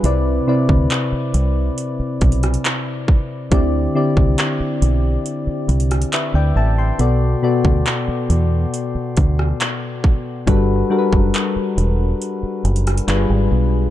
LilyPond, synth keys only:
\new Staff \with { instrumentName = "Synth keys" } { \time 4/4 \key g \major \tempo 4 = 69 << { r1 | r2. <b' e''>16 <d'' g''>16 <e'' a''>16 <g'' c'''>16~ | <g'' c'''>16 r2. r8. | r1 | } \\ { <c c' e' b' d''>8 <c c' e' b' d''>4. r2 | <d c' e' g' d''>8 <d c' e' g' d''>4. r2 | <b, b fis' a' d''>8 <b, b fis' a' d''>4. r2 | <g d' fis' a' b'>8 <g d' fis' a' bes' b'>4. r4 <g d' f' aes' b'>4 | } >> }